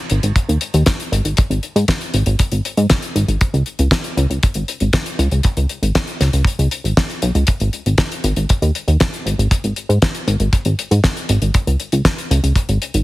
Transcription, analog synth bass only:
0.10 G#1
0.23 G#1
0.49 D#2
0.74 D#2
1.12 G#1
1.25 G#1
1.50 G#1
1.76 G#2
2.14 G#1
2.27 G#1
2.52 G#1
2.77 G#2
3.16 G#1
3.28 G#1
3.54 C#2
3.79 C#2
4.17 C#2
4.30 C#2
4.55 G#1
4.81 G#1
5.19 C#2
5.32 C#2
5.57 C#2
5.82 G#1
6.21 C#2
6.33 C#2
6.59 C#2
6.84 G#1
7.22 B1
7.35 C#2
7.60 G#1
7.86 G#1
8.24 G#1
8.37 G#1
8.62 D#2
8.88 D#2
9.26 G#1
9.38 G#1
9.64 G#1
9.89 G#2
10.27 G#1
10.40 G#1
10.66 G#1
10.91 G#2
11.29 G#1
11.42 G#1
11.67 C#2
11.93 C#2
12.31 C#2
12.44 C#2
12.69 G#1
12.94 G#1

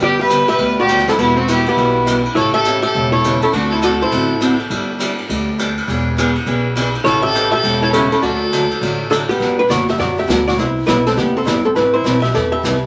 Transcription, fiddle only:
0.03 G4
0.21 B4
0.50 B4
0.80 G4
1.10 E4
1.20 E4
1.38 F#4
1.51 G4
1.69 E4
2.38 A4
2.54 A4
2.85 A4
3.12 A4
3.42 E4
3.53 F#4
3.69 A4
3.82 A4
4.00 A4
7.05 A4
7.24 A4
7.54 A4
7.82 A4
7.92 E4
8.11 E4
8.22 A4

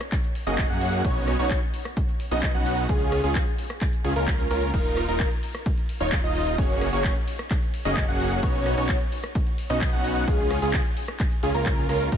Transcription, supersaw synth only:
0.47 A#3 C#4 F#4 G#4 D#5
0.70 A#3 C#4 F#4 G#4 F#5
1.04 B3 C#4 D#4 F#4 C#5
1.39 B3 C#4 D#4 F#4 C#5
2.31 B3 C#4 D#4 F#4 D#5
2.55 B3 C#4 D#4 F#4 F#5
2.89 C#4 F4 G#4
3.24 C#4 F4 G#4
4.04 C#4 F4 G#4
4.16 C#4 F4 A#4
4.51 C#4 F4 A#4
4.74 D#4 F4 A#4
5.08 D#4 F4 A#4
6.00 D#4 F4 C#5
6.24 D#4 F4 D#5
6.58 A#3 C#4 F#4 G#4 C#5
6.93 A#3 C#4 F#4 G#4 C#5
7.85 A#3 C#4 F#4 G#4 D#5
8.08 A#3 C#4 F#4 G#4 F#5
8.43 B3 C#4 D#4 F#4 C#5
8.78 B3 C#4 D#4 F#4 C#5
9.70 B3 C#4 D#4 F#4 D#5
9.93 B3 C#4 D#4 F#4 F#5
10.28 G#4
10.62 C#4 F4 G#4
11.43 C#4 F4 G#4
11.55 C#4 F4 A#4
11.89 C#4 F4 A#4
12.12 D#4 F4 A#4

